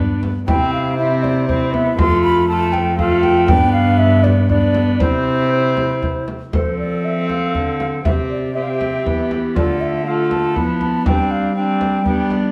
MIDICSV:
0, 0, Header, 1, 6, 480
1, 0, Start_track
1, 0, Key_signature, 0, "major"
1, 0, Tempo, 505051
1, 450, Time_signature, 3, 2, 24, 8
1, 7169, Tempo, 500835
1, 11936, End_track
2, 0, Start_track
2, 0, Title_t, "Flute"
2, 0, Program_c, 0, 73
2, 452, Note_on_c, 0, 79, 93
2, 675, Note_off_c, 0, 79, 0
2, 696, Note_on_c, 0, 77, 84
2, 929, Note_off_c, 0, 77, 0
2, 935, Note_on_c, 0, 76, 83
2, 1170, Note_on_c, 0, 74, 81
2, 1184, Note_off_c, 0, 76, 0
2, 1401, Note_off_c, 0, 74, 0
2, 1407, Note_on_c, 0, 72, 82
2, 1643, Note_off_c, 0, 72, 0
2, 1647, Note_on_c, 0, 76, 88
2, 1874, Note_off_c, 0, 76, 0
2, 1880, Note_on_c, 0, 84, 103
2, 2115, Note_off_c, 0, 84, 0
2, 2121, Note_on_c, 0, 83, 101
2, 2351, Note_off_c, 0, 83, 0
2, 2357, Note_on_c, 0, 81, 105
2, 2591, Note_on_c, 0, 79, 95
2, 2605, Note_off_c, 0, 81, 0
2, 2826, Note_off_c, 0, 79, 0
2, 2832, Note_on_c, 0, 77, 99
2, 3057, Note_off_c, 0, 77, 0
2, 3062, Note_on_c, 0, 79, 101
2, 3293, Note_off_c, 0, 79, 0
2, 3299, Note_on_c, 0, 79, 112
2, 3538, Note_off_c, 0, 79, 0
2, 3543, Note_on_c, 0, 77, 103
2, 3783, Note_on_c, 0, 76, 110
2, 3797, Note_off_c, 0, 77, 0
2, 4026, Note_on_c, 0, 74, 90
2, 4040, Note_off_c, 0, 76, 0
2, 4262, Note_off_c, 0, 74, 0
2, 4267, Note_on_c, 0, 74, 91
2, 4744, Note_off_c, 0, 74, 0
2, 4755, Note_on_c, 0, 72, 88
2, 5943, Note_off_c, 0, 72, 0
2, 6220, Note_on_c, 0, 72, 69
2, 6439, Note_off_c, 0, 72, 0
2, 6452, Note_on_c, 0, 74, 66
2, 6698, Note_on_c, 0, 76, 68
2, 6713, Note_off_c, 0, 74, 0
2, 6925, Note_off_c, 0, 76, 0
2, 6931, Note_on_c, 0, 77, 71
2, 7402, Note_off_c, 0, 77, 0
2, 7411, Note_on_c, 0, 77, 72
2, 7468, Note_off_c, 0, 77, 0
2, 7655, Note_on_c, 0, 76, 79
2, 7712, Note_off_c, 0, 76, 0
2, 7898, Note_on_c, 0, 74, 68
2, 8136, Note_on_c, 0, 76, 67
2, 8151, Note_off_c, 0, 74, 0
2, 8207, Note_on_c, 0, 77, 61
2, 8222, Note_off_c, 0, 76, 0
2, 8274, Note_on_c, 0, 76, 74
2, 8289, Note_off_c, 0, 77, 0
2, 8860, Note_off_c, 0, 76, 0
2, 9106, Note_on_c, 0, 74, 75
2, 9342, Note_on_c, 0, 76, 76
2, 9356, Note_off_c, 0, 74, 0
2, 9575, Note_off_c, 0, 76, 0
2, 9581, Note_on_c, 0, 77, 70
2, 9638, Note_off_c, 0, 77, 0
2, 9831, Note_on_c, 0, 81, 85
2, 10294, Note_off_c, 0, 81, 0
2, 10305, Note_on_c, 0, 81, 84
2, 10535, Note_off_c, 0, 81, 0
2, 10547, Note_on_c, 0, 79, 88
2, 10780, Note_on_c, 0, 77, 79
2, 10794, Note_off_c, 0, 79, 0
2, 11017, Note_off_c, 0, 77, 0
2, 11026, Note_on_c, 0, 79, 77
2, 11725, Note_off_c, 0, 79, 0
2, 11936, End_track
3, 0, Start_track
3, 0, Title_t, "Recorder"
3, 0, Program_c, 1, 74
3, 0, Note_on_c, 1, 62, 68
3, 196, Note_off_c, 1, 62, 0
3, 447, Note_on_c, 1, 64, 68
3, 896, Note_off_c, 1, 64, 0
3, 931, Note_on_c, 1, 64, 66
3, 1400, Note_off_c, 1, 64, 0
3, 1413, Note_on_c, 1, 64, 63
3, 1892, Note_on_c, 1, 65, 68
3, 1906, Note_off_c, 1, 64, 0
3, 2363, Note_off_c, 1, 65, 0
3, 2368, Note_on_c, 1, 65, 69
3, 2832, Note_off_c, 1, 65, 0
3, 2844, Note_on_c, 1, 65, 74
3, 3321, Note_on_c, 1, 62, 77
3, 3336, Note_off_c, 1, 65, 0
3, 4269, Note_off_c, 1, 62, 0
3, 4275, Note_on_c, 1, 62, 72
3, 4749, Note_on_c, 1, 64, 70
3, 4764, Note_off_c, 1, 62, 0
3, 5965, Note_off_c, 1, 64, 0
3, 6205, Note_on_c, 1, 69, 57
3, 7612, Note_off_c, 1, 69, 0
3, 7652, Note_on_c, 1, 67, 51
3, 8122, Note_off_c, 1, 67, 0
3, 8128, Note_on_c, 1, 67, 61
3, 9094, Note_on_c, 1, 65, 54
3, 9109, Note_off_c, 1, 67, 0
3, 9569, Note_off_c, 1, 65, 0
3, 9575, Note_on_c, 1, 65, 62
3, 10054, Note_on_c, 1, 64, 55
3, 10068, Note_off_c, 1, 65, 0
3, 10527, Note_on_c, 1, 62, 61
3, 10541, Note_off_c, 1, 64, 0
3, 11011, Note_off_c, 1, 62, 0
3, 11016, Note_on_c, 1, 62, 62
3, 11484, Note_off_c, 1, 62, 0
3, 11492, Note_on_c, 1, 62, 61
3, 11936, Note_off_c, 1, 62, 0
3, 11936, End_track
4, 0, Start_track
4, 0, Title_t, "Viola"
4, 0, Program_c, 2, 41
4, 0, Note_on_c, 2, 59, 66
4, 245, Note_off_c, 2, 59, 0
4, 456, Note_on_c, 2, 60, 69
4, 900, Note_off_c, 2, 60, 0
4, 931, Note_on_c, 2, 60, 64
4, 1400, Note_off_c, 2, 60, 0
4, 1408, Note_on_c, 2, 60, 67
4, 1644, Note_on_c, 2, 59, 60
4, 1658, Note_off_c, 2, 60, 0
4, 1876, Note_off_c, 2, 59, 0
4, 1882, Note_on_c, 2, 57, 65
4, 2351, Note_off_c, 2, 57, 0
4, 2357, Note_on_c, 2, 57, 73
4, 2827, Note_off_c, 2, 57, 0
4, 2838, Note_on_c, 2, 57, 75
4, 3317, Note_on_c, 2, 59, 76
4, 3332, Note_off_c, 2, 57, 0
4, 4273, Note_off_c, 2, 59, 0
4, 4278, Note_on_c, 2, 59, 76
4, 4757, Note_on_c, 2, 60, 72
4, 4771, Note_off_c, 2, 59, 0
4, 6019, Note_off_c, 2, 60, 0
4, 6207, Note_on_c, 2, 60, 58
4, 7613, Note_off_c, 2, 60, 0
4, 7650, Note_on_c, 2, 60, 53
4, 8124, Note_off_c, 2, 60, 0
4, 8134, Note_on_c, 2, 60, 50
4, 8626, Note_on_c, 2, 59, 56
4, 8640, Note_off_c, 2, 60, 0
4, 9110, Note_on_c, 2, 57, 55
4, 9125, Note_off_c, 2, 59, 0
4, 9581, Note_off_c, 2, 57, 0
4, 9587, Note_on_c, 2, 57, 59
4, 10062, Note_on_c, 2, 59, 63
4, 10076, Note_off_c, 2, 57, 0
4, 10537, Note_on_c, 2, 60, 60
4, 10552, Note_off_c, 2, 59, 0
4, 11005, Note_off_c, 2, 60, 0
4, 11010, Note_on_c, 2, 60, 58
4, 11482, Note_off_c, 2, 60, 0
4, 11489, Note_on_c, 2, 59, 65
4, 11936, Note_off_c, 2, 59, 0
4, 11936, End_track
5, 0, Start_track
5, 0, Title_t, "Cello"
5, 0, Program_c, 3, 42
5, 0, Note_on_c, 3, 43, 68
5, 236, Note_off_c, 3, 43, 0
5, 452, Note_on_c, 3, 48, 74
5, 1851, Note_off_c, 3, 48, 0
5, 1889, Note_on_c, 3, 41, 70
5, 3313, Note_on_c, 3, 43, 77
5, 3328, Note_off_c, 3, 41, 0
5, 4753, Note_on_c, 3, 48, 72
5, 4767, Note_off_c, 3, 43, 0
5, 6017, Note_off_c, 3, 48, 0
5, 6204, Note_on_c, 3, 53, 52
5, 7167, Note_on_c, 3, 50, 53
5, 7181, Note_off_c, 3, 53, 0
5, 7645, Note_off_c, 3, 50, 0
5, 7650, Note_on_c, 3, 48, 55
5, 8596, Note_off_c, 3, 48, 0
5, 8618, Note_on_c, 3, 52, 57
5, 9101, Note_on_c, 3, 50, 59
5, 9115, Note_off_c, 3, 52, 0
5, 10058, Note_on_c, 3, 53, 57
5, 10072, Note_off_c, 3, 50, 0
5, 10532, Note_off_c, 3, 53, 0
5, 10537, Note_on_c, 3, 55, 60
5, 11475, Note_off_c, 3, 55, 0
5, 11494, Note_on_c, 3, 55, 65
5, 11936, Note_off_c, 3, 55, 0
5, 11936, End_track
6, 0, Start_track
6, 0, Title_t, "Frame drum"
6, 218, Note_on_c, 9, 64, 50
6, 313, Note_off_c, 9, 64, 0
6, 455, Note_on_c, 9, 64, 82
6, 550, Note_off_c, 9, 64, 0
6, 1179, Note_on_c, 9, 64, 50
6, 1274, Note_off_c, 9, 64, 0
6, 1416, Note_on_c, 9, 64, 53
6, 1511, Note_off_c, 9, 64, 0
6, 1651, Note_on_c, 9, 64, 50
6, 1746, Note_off_c, 9, 64, 0
6, 1887, Note_on_c, 9, 64, 83
6, 1983, Note_off_c, 9, 64, 0
6, 2600, Note_on_c, 9, 64, 55
6, 2695, Note_off_c, 9, 64, 0
6, 2840, Note_on_c, 9, 64, 50
6, 2935, Note_off_c, 9, 64, 0
6, 3072, Note_on_c, 9, 64, 53
6, 3167, Note_off_c, 9, 64, 0
6, 3309, Note_on_c, 9, 64, 86
6, 3404, Note_off_c, 9, 64, 0
6, 4031, Note_on_c, 9, 64, 53
6, 4126, Note_off_c, 9, 64, 0
6, 4270, Note_on_c, 9, 64, 50
6, 4365, Note_off_c, 9, 64, 0
6, 4510, Note_on_c, 9, 64, 52
6, 4605, Note_off_c, 9, 64, 0
6, 4754, Note_on_c, 9, 64, 82
6, 4849, Note_off_c, 9, 64, 0
6, 5484, Note_on_c, 9, 64, 51
6, 5579, Note_off_c, 9, 64, 0
6, 5727, Note_on_c, 9, 64, 50
6, 5822, Note_off_c, 9, 64, 0
6, 5967, Note_on_c, 9, 64, 48
6, 6062, Note_off_c, 9, 64, 0
6, 6209, Note_on_c, 9, 64, 73
6, 6304, Note_off_c, 9, 64, 0
6, 6933, Note_on_c, 9, 64, 46
6, 7028, Note_off_c, 9, 64, 0
6, 7173, Note_on_c, 9, 64, 45
6, 7269, Note_off_c, 9, 64, 0
6, 7417, Note_on_c, 9, 64, 46
6, 7512, Note_off_c, 9, 64, 0
6, 7657, Note_on_c, 9, 64, 75
6, 7752, Note_off_c, 9, 64, 0
6, 8382, Note_on_c, 9, 64, 47
6, 8477, Note_off_c, 9, 64, 0
6, 8627, Note_on_c, 9, 64, 49
6, 8723, Note_off_c, 9, 64, 0
6, 8863, Note_on_c, 9, 64, 47
6, 8959, Note_off_c, 9, 64, 0
6, 9105, Note_on_c, 9, 64, 75
6, 9201, Note_off_c, 9, 64, 0
6, 9821, Note_on_c, 9, 64, 49
6, 9917, Note_off_c, 9, 64, 0
6, 10062, Note_on_c, 9, 64, 49
6, 10158, Note_off_c, 9, 64, 0
6, 10299, Note_on_c, 9, 64, 45
6, 10395, Note_off_c, 9, 64, 0
6, 10540, Note_on_c, 9, 64, 76
6, 10635, Note_off_c, 9, 64, 0
6, 11258, Note_on_c, 9, 64, 50
6, 11354, Note_off_c, 9, 64, 0
6, 11494, Note_on_c, 9, 64, 47
6, 11590, Note_off_c, 9, 64, 0
6, 11733, Note_on_c, 9, 64, 47
6, 11829, Note_off_c, 9, 64, 0
6, 11936, End_track
0, 0, End_of_file